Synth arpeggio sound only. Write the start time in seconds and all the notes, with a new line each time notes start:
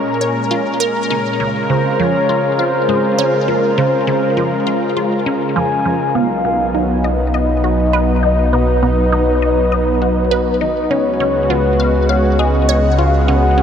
0.21 C#5
0.51 F4
0.80 A#4
1.10 C#4
1.40 C#3
1.70 C#3
2.00 F3
2.29 F4
2.59 F4
2.89 G#3
3.18 C#4
3.48 F3
3.78 C#3
4.07 C#3
4.37 F3
4.67 F4
4.97 F4
5.26 C#4
5.56 F3
5.86 F3
6.15 B3
6.45 B3
6.75 D#4
7.04 D#5
7.34 D#5
7.64 F#4
7.93 B4
8.23 D#4
8.53 B3
8.83 B3
9.12 D#4
9.42 D#5
9.72 D#5
10.02 F#4
10.31 B4
10.61 D#4
10.91 C#4
11.20 C#4
11.50 F4
11.80 F5
12.09 F5
12.39 G#4
12.69 C#5
12.98 F4
13.28 C#4
13.58 C#4